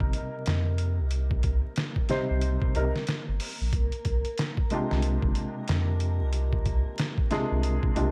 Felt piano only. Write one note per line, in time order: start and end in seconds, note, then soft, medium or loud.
0.00 2.06 C3 medium
0.00 2.07 G3 medium
0.00 2.07 D#4 medium
0.00 2.07 A#4 medium
2.09 2.72 C3 medium
2.09 2.72 G3 medium
2.09 2.72 D#4 medium
2.09 2.72 C5 loud
2.75 2.91 C3 medium
2.75 2.91 G3 medium
2.75 2.91 D#4 medium
2.75 2.91 A#4 medium
4.71 7.28 C3 medium
4.71 7.28 G#3 medium
4.71 7.29 D4 medium
4.71 7.29 F4 medium
4.71 7.30 G4 medium
7.31 7.93 C3 medium
7.31 7.93 G#3 medium
7.31 7.93 D4 medium
7.31 7.94 F4 medium
7.31 7.94 G#4 loud
7.95 8.11 C3 medium
7.95 8.11 G#3 medium
7.95 8.11 D4 medium
7.95 8.11 F4 medium
7.95 8.11 G4 medium